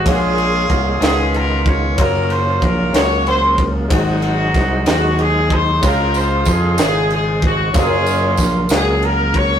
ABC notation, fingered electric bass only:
X:1
M:6/8
L:1/8
Q:3/8=62
K:Db
V:1 name="Fingered electric bass" clef=bass
B,,,2 C,, D,,3 | G,,,2 B,,, D,,3 | A,,,2 C,, E,,3 | D,,2 F,, A,,,3 |
G,,,2 B,,, D,,3 |]